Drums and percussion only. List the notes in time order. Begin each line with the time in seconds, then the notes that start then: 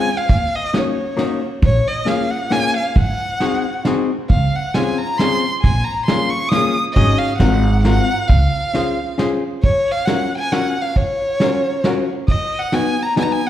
0.29 kick, ride
0.74 snare, ride
1.18 snare, ride
1.62 kick, ride
2.07 snare, ride
2.51 snare, ride
2.96 kick, ride
3.40 snare, ride
3.85 snare, ride
4.30 kick, ride
4.74 snare, ride
5.19 snare, ride
5.64 kick, ride
6.08 snare, ride
6.52 snare, ride
6.96 kick, ride
7.40 snare, ride
7.85 snare, ride
8.29 kick, ride
8.75 snare, ride
9.19 snare, ride
9.64 kick, ride
9.87 ride
10.07 snare, ride
10.52 snare, ride
10.96 kick, ride
11.40 snare, ride
11.84 snare, ride
12.28 kick, ride
12.52 ride
12.72 snare, ride
13.17 snare, ride